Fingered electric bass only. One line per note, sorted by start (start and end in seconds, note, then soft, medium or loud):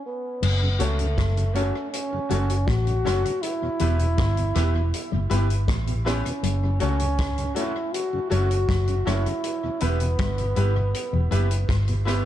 0.43 0.78 F#1 medium
0.80 1.15 C#2 medium
1.18 1.71 F#1 medium
2.31 2.66 F#1 loud
2.68 3.03 A1 medium
3.06 3.24 F#1 medium
3.82 4.18 E1 medium
4.18 4.53 G1 medium
4.56 4.91 E1 medium
5.13 5.30 F#1 medium
5.31 5.66 G1 medium
5.69 6.22 A1 loud
6.43 6.78 F#1 loud
6.82 7.53 C#2 medium
8.32 8.67 F#1 medium
8.69 9.04 F#1 medium
9.07 9.25 F#1 medium
9.82 10.17 E1 medium
10.19 10.54 G1 medium
10.57 10.92 G1 medium
11.13 11.31 E1 medium
11.32 11.67 F#1 medium
11.69 12.22 G1 medium